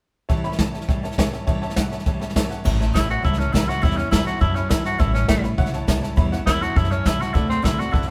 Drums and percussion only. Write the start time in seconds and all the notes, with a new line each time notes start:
0.29 kick, snare
0.44 snare
0.52 snare
0.59 kick, snare, hi-hat pedal
0.74 snare
0.81 snare
0.89 kick, snare
1.04 snare
1.11 snare
1.18 kick, snare, hi-hat pedal
1.33 snare
1.47 kick, snare
1.63 snare
1.70 snare
1.76 kick, snare, hi-hat pedal
1.92 snare
1.99 snare
2.06 kick, snare
2.21 snare
2.29 snare
2.36 kick, snare, hi-hat pedal
2.51 snare
2.65 kick, snare, crash
2.81 snare
2.95 kick, snare, hi-hat pedal
3.10 snare
3.25 kick, snare
3.33 snare
3.40 snare
3.54 kick, snare, hi-hat pedal
3.69 snare
3.83 kick, snare
3.91 snare
3.98 snare
4.12 kick, snare, hi-hat pedal
4.27 snare
4.41 kick, snare
4.56 snare
4.71 kick, snare, hi-hat pedal
4.85 snare
4.99 kick, snare
5.15 snare
5.28 kick, snare, hi-hat pedal
5.43 snare
5.58 kick, snare
5.66 snare
5.73 snare
5.88 kick, snare, hi-hat pedal
6.03 snare
6.17 kick, snare
6.32 snare
6.47 kick, snare, hi-hat pedal
6.62 snare
6.76 kick, snare
6.84 snare
6.91 snare
7.06 kick, snare, hi-hat pedal
7.21 snare
7.35 kick, snare
7.50 snare
7.64 kick, snare, hi-hat pedal
7.80 snare
7.94 kick, snare
8.02 snare